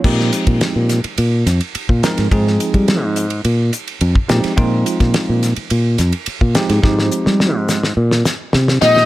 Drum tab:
CC |x---------------|----------------|----------------|----------------|
RD |--xxx-xxx-xxx-xx|x-xxx-xxx-xxx-xx|x-xxx-xxx-xxx-xx|----------------|
HH |--p---p---p---p-|--p---p---p---p-|--p---p---p---p-|--p---p---p---p-|
SD |-o--o-o---o---oo|-o--o---------oo|---oo-o---o---oo|oo-oo-oo-oo-oooo|
BD |o--o---------o--|o--o---------o--|o--o---------o--|o---------------|